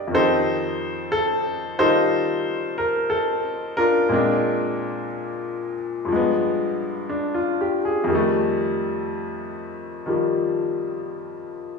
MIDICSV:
0, 0, Header, 1, 2, 480
1, 0, Start_track
1, 0, Tempo, 993377
1, 60, Time_signature, 4, 2, 24, 8
1, 5696, End_track
2, 0, Start_track
2, 0, Title_t, "Upright piano"
2, 0, Program_c, 0, 0
2, 0, Control_c, 0, 64, 127
2, 0, Note_on_c, 0, 48, 49
2, 0, Note_on_c, 0, 55, 42
2, 0, Note_on_c, 0, 58, 48
2, 0, Note_on_c, 0, 62, 51
2, 0, Note_on_c, 0, 63, 54
2, 0, Note_on_c, 0, 67, 50
2, 0, Note_on_c, 0, 70, 48
2, 0, Note_on_c, 0, 74, 82
2, 0, Note_on_c, 0, 75, 84
2, 37, Note_on_c, 0, 41, 48
2, 54, Note_on_c, 0, 51, 42
2, 58, Note_off_c, 0, 55, 0
2, 59, Note_off_c, 0, 48, 0
2, 62, Note_off_c, 0, 58, 0
2, 64, Note_off_c, 0, 63, 0
2, 65, Note_off_c, 0, 62, 0
2, 66, Note_off_c, 0, 74, 0
2, 66, Control_c, 0, 64, 0
2, 67, Note_off_c, 0, 75, 0
2, 70, Note_off_c, 0, 67, 0
2, 70, Note_on_c, 0, 69, 68
2, 71, Note_off_c, 0, 70, 0
2, 71, Note_on_c, 0, 60, 44
2, 71, Note_on_c, 0, 63, 70
2, 71, Note_on_c, 0, 72, 87
2, 91, Note_on_c, 0, 67, 54
2, 165, Control_c, 0, 64, 127
2, 533, Note_off_c, 0, 69, 0
2, 540, Note_on_c, 0, 69, 84
2, 562, Note_off_c, 0, 72, 0
2, 843, Note_off_c, 0, 69, 0
2, 854, Note_off_c, 0, 51, 0
2, 861, Note_off_c, 0, 63, 0
2, 862, Note_on_c, 0, 51, 44
2, 865, Note_on_c, 0, 72, 84
2, 868, Note_on_c, 0, 55, 36
2, 868, Note_on_c, 0, 63, 67
2, 869, Note_on_c, 0, 69, 65
2, 876, Note_on_c, 0, 65, 44
2, 1342, Note_on_c, 0, 70, 70
2, 1360, Note_off_c, 0, 72, 0
2, 1490, Note_off_c, 0, 69, 0
2, 1497, Note_on_c, 0, 69, 74
2, 1508, Note_off_c, 0, 70, 0
2, 1802, Note_off_c, 0, 69, 0
2, 1808, Note_off_c, 0, 63, 0
2, 1821, Note_off_c, 0, 65, 0
2, 1821, Note_on_c, 0, 70, 88
2, 1828, Note_on_c, 0, 62, 46
2, 1828, Note_on_c, 0, 65, 52
2, 1973, Note_off_c, 0, 41, 0
2, 1977, Note_on_c, 0, 46, 54
2, 1983, Note_on_c, 0, 56, 51
2, 1984, Note_off_c, 0, 51, 0
2, 1984, Note_off_c, 0, 60, 0
2, 1988, Note_off_c, 0, 55, 0
2, 1991, Note_off_c, 0, 62, 0
2, 1991, Control_c, 0, 64, 0
2, 1991, Note_on_c, 0, 60, 50
2, 1999, Note_on_c, 0, 62, 60
2, 2000, Note_off_c, 0, 67, 0
2, 2072, Control_c, 0, 64, 127
2, 2444, Note_off_c, 0, 70, 0
2, 2767, Note_off_c, 0, 65, 0
2, 2923, Note_on_c, 0, 43, 48
2, 2940, Note_on_c, 0, 53, 45
2, 2941, Note_off_c, 0, 46, 0
2, 2944, Note_off_c, 0, 56, 0
2, 2948, Note_off_c, 0, 60, 0
2, 2952, Note_off_c, 0, 62, 0
2, 2952, Control_c, 0, 64, 0
2, 2957, Note_on_c, 0, 56, 50
2, 2975, Note_on_c, 0, 59, 58
2, 3040, Control_c, 0, 64, 127
2, 3428, Note_on_c, 0, 62, 48
2, 3549, Note_on_c, 0, 65, 47
2, 3650, Note_off_c, 0, 62, 0
2, 3677, Note_on_c, 0, 67, 46
2, 3751, Note_off_c, 0, 65, 0
2, 3794, Note_on_c, 0, 68, 51
2, 3819, Note_off_c, 0, 67, 0
2, 3886, Note_on_c, 0, 41, 54
2, 3893, Note_off_c, 0, 43, 0
2, 3901, Note_off_c, 0, 53, 0
2, 3902, Note_on_c, 0, 51, 53
2, 3909, Control_c, 0, 64, 0
2, 3910, Note_off_c, 0, 56, 0
2, 3919, Note_off_c, 0, 59, 0
2, 3920, Note_on_c, 0, 55, 51
2, 3937, Note_on_c, 0, 57, 65
2, 3956, Note_off_c, 0, 68, 0
2, 3986, Control_c, 0, 64, 127
2, 4854, Note_off_c, 0, 51, 0
2, 4861, Note_on_c, 0, 51, 44
2, 4868, Note_on_c, 0, 53, 36
2, 4869, Note_off_c, 0, 55, 0
2, 4876, Note_on_c, 0, 55, 42
2, 5696, Note_off_c, 0, 41, 0
2, 5696, Note_off_c, 0, 51, 0
2, 5696, Note_off_c, 0, 53, 0
2, 5696, Note_off_c, 0, 55, 0
2, 5696, Note_off_c, 0, 57, 0
2, 5696, End_track
0, 0, End_of_file